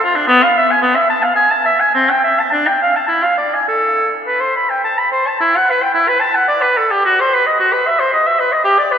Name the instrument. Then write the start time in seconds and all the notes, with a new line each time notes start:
oboe
0.04 F4
0.16 D4
0.27 B3
0.43 F5
0.57 E5
0.71 G#5
0.82 B3
0.96 E5
1.10 A5
1.23 F5
1.35 G#5
1.50 A5
1.66 E5
1.80 G#5
1.95 C4
2.10 G5
2.24 E5
2.39 A5
2.52 D4
2.67 G5
2.82 F5
2.96 A5
3.08 E4
3.23 F5
3.38 D5
3.54 G#5
3.68 A4
4.27 B4
4.41 C5
4.56 B5
4.70 G5
4.84 A5
4.98 B5
5.12 C5
5.27 A5
5.41 E4
5.56 F#5
5.70 B4
5.83 G5
5.94 E4
6.08 B4
6.20 A5
6.35 F#5
6.48 D5
6.62 B4
6.77 A4
6.91 G4
7.05 F#4
7.20 C5
7.34 B4
7.47 D#5
7.60 F#4
7.73 B4
7.87 E5
8.00 C5
8.13 D#5
8.26 E5
8.40 B4
8.53 D#5
8.64 G4
8.79 D5
8.92 B4